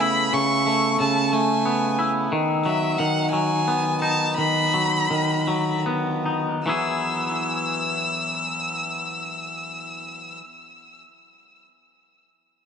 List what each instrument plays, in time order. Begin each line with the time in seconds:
Already playing: clean electric guitar C#3 A3 B3
0.00 clean electric guitar E4, violin B5
0.33 clean electric guitar C#3, violin C#6
0.66 clean electric guitar A3
1.00 clean electric guitar C#3, violin A5
1.33 clean electric guitar A3, violin G#5
1.66 clean electric guitar B3
1.99 clean electric guitar E4
2.32 clean electric guitar D#3
2.65 clean electric guitar F#3, violin E5
2.98 clean electric guitar D#3, violin F#5
3.31 clean electric guitar F#3, violin G#5
3.68 clean electric guitar B3
4.02 clean electric guitar D#4, violin A5
4.38 clean electric guitar D#3, violin B5
4.74 clean electric guitar F#3
5.10 clean electric guitar D#3
5.47 clean electric guitar F#3
5.86 clean electric guitar B3
6.26 clean electric guitar D#4
6.66 clean electric guitar E3 F#3 B3 E4 G#4, violin E6